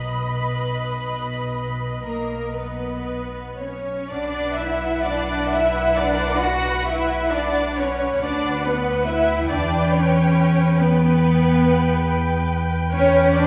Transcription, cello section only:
Already playing: B2
2.05 A#3
2.56 B3
3.60 C#4
4.11 D4
4.58 E4
5.07 D4
5.54 E4
5.99 D4
6.43 F#4
6.88 E4
7.34 D4
7.79 C#4
8.22 D4
8.65 B3
9.07 E4
9.50 D4
9.94 C#4
10.78 B3
12.93 C#4
13.35 D4

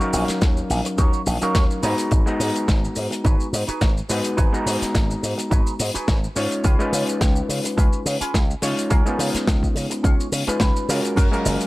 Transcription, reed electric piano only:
0.00 F#3 C#4 D#4 A#4 F5
1.42 F#3 C#4 D#4 A#4 F5
1.83 G#3 B3 D#4 F#4 A#5
2.26 G#3 B3 D#4 F#4 A#5
4.09 G#3 B3 D#4 F#4 B4
4.53 G#3 B3 D#4 F#4 A#5
6.36 G#3 C#4 D#4 F4 C#5
6.79 G#3 C#4 D#4 F4 B4
8.62 G#3 C#4 D#4 F4 C#5
9.06 G#3 B3 C#4 D#4 F4
10.48 G#3 C#4 D#4 F4 B4
10.89 G#3 C#4 F4 F#4 A#4
11.32 F#3 G#3 C#4 A#4 F5

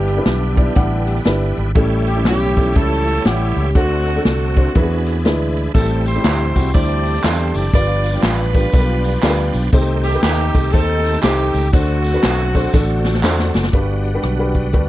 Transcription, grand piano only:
Already playing: G2
0.17 G3 D4 E4 B4
0.56 G3 D4 E4 D5
0.75 G3 D4 E4 F#5
1.25 G3 D4 E4 B4
1.75 A2 G3 C#4 E4 A4
2.15 G3 C#4 E4 A4
2.56 G3 C#4 E4 A4
2.75 G3 C#4 E4 A4
3.25 G3 C#4 E4 F#5
3.75 D3 A3 D4 F#4 C5
4.16 A3 D4 F#4 A4
4.56 A3 D4 F#4 C5
4.75 E3 F#3 D4 E4 B4
4.81 G#4
5.24 G#3 D4 E4 B4
5.74 A2 G3 C4 E4 A4
6.15 G3 C4 E4 G4
6.55 G3 C4 E4 F#4
6.73 D3 G3 D4 E4 C5
7.23 G3 D4 E4 A4
7.73 G2 G3 D4 F4 B4
8.14 G3 D4 F4 G4
8.54 G3 D4 F4 B4
8.72 B2 G3 D4 F4 A4
8.80 B4
9.22 G3 D4 F4 A4
9.30 B4
9.72 C3 A3 D#4 G4 C5
10.13 A3 D#4 G4 B4
10.54 A3 D#4 G4 D#5
10.73 A3 D#4 G4 C5
11.23 A3 D#4 G4 C5
11.72 D3 A3 D4 F#4 C5
12.13 A3 D4 F#4 B4
12.54 A3 D4 F#4 C5
12.73 A3 D4 F#4 A4
13.23 A3 D4 F#4 C5
13.73 G2 G3 D4 F#4 B4
14.14 G3 D4 F#4 B4
14.38 G3 D4 F#4 B4
14.72 G3 D4 F#4 B4

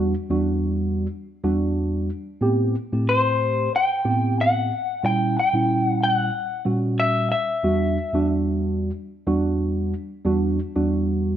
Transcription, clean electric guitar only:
3.09 C5
3.76 G5
4.41 F#5
5.06 G5
5.39 G5
5.85 F#5
6.03 F#5
7.00 E5
7.32 E5

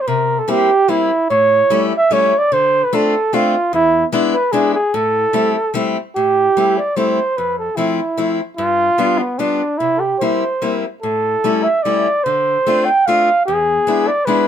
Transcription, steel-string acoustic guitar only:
0.08 C3
0.48 G3 A#3 C4 E4
0.88 G3 A#3 C4 E4
1.30 A2
1.70 G3 A3 C#4 E4
2.11 G3 A3 C#4 E4
2.52 D3
2.93 A3 C4 D4 F4
3.33 A3 C4 D4 F4
3.73 E2
4.12 G#3 B3 D4 E4
4.53 G#3 B3 D4 E4
4.94 A2
5.33 G3 A3 C4 E4
5.74 G3 A3 C4 E4
6.16 A2
6.57 G3 A3 C4 E4
6.96 G3 A3 C4 E4
7.38 F2
7.77 F3 A3 C4 E4
8.17 F3 A3 C4 E4
8.58 G2
8.98 G3 B3 D4 F4
9.39 G3 B3 D4 F4
9.80 C3
10.21 G3 A#3 C4 E4
10.62 G3 A#3 C4 E4
11.03 A2
11.44 G3 A3 C#4 E4
11.85 G3 A3 C#4 E4
12.26 D3
12.66 A3 C4 D4 F4
13.07 A3 C4 D4 F4
13.48 E2
13.87 G#3 B3 D4 E4
14.27 G#3 B3 D4 E4

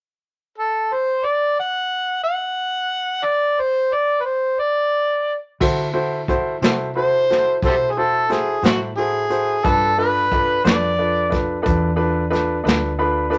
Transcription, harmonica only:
0.58 A4
0.93 C5
1.25 D5
1.60 F#5
2.24 F#5
3.25 D5
3.60 C5
3.93 D5
4.21 B4
4.25 C5
4.59 D5
6.97 C5
7.66 G4 A4 C5
7.91 G#4
7.99 A4
8.31 G#4
8.65 F#4
8.97 G#4
9.65 A4
9.99 B4
10.65 D5

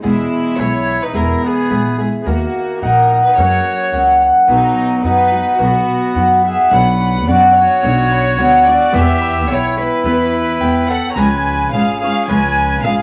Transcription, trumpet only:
0.05 G#3
0.60 E4
1.04 D#4
1.15 E4
1.44 B3
2.21 B3
2.28 A#3
2.82 D#4
3.26 D#4
3.39 F#4
4.50 F#3
5.04 D#4
5.62 B3
6.48 G#4
6.73 B4
7.29 F#4
7.50 F#4
7.57 F#4
8.68 F#4
8.95 G4
9.49 E4
9.78 E4
10.89 A4
11.11 C#5
11.16 B4
11.74 G#4
12.00 G#4
12.29 B4
12.85 G#4

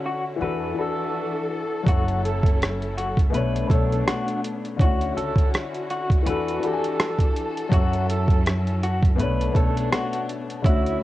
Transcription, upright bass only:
0.41 E2
1.87 F#1
3.33 B1
3.70 B1
4.80 D2
5.17 C#2
6.26 E2
7.72 F#2
9.18 B1
9.55 B1
10.65 D2

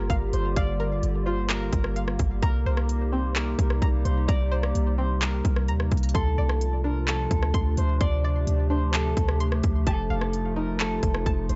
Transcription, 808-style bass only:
0.10 G1
0.33 G1
0.56 G1
1.03 G1
1.73 G1
2.19 G1
2.43 C2
2.66 C2
3.59 C2
3.82 C2
4.05 C2
4.29 C2
4.75 C2
5.45 C2
5.68 D#2
5.92 C2
6.15 D2
6.38 C2
7.31 D2
7.54 D2
7.78 D2
8.01 D2
8.47 D2
9.17 D2
9.64 D2
9.87 F1
10.10 F1
11.03 F1
11.26 F1
11.50 F1

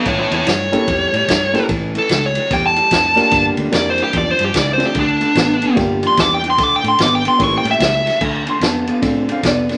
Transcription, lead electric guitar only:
0.07 E4 C#5
0.20 E4 C#5
0.34 E4 C#5
0.48 C#5
1.98 A4
2.26 C#5
2.53 G5
2.66 A5
3.74 D5
3.90 C5
4.03 G4
4.18 D5
4.31 C5
4.45 G4
4.58 D5
4.73 C5
4.86 G4
5.00 D4
6.07 C6
6.21 D6
6.34 G5
6.50 C6
6.63 D6
6.76 G5
6.88 C6
7.03 D6
7.15 G5
7.28 C6
7.44 C#6
7.58 G5
7.71 E5

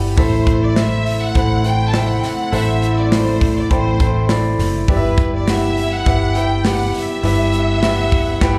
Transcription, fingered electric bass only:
Already playing: G1
0.17 A1
1.35 A1
2.52 A1
3.71 A1
4.59 F#1
4.88 G1
6.06 G1
7.23 G1
8.41 G1

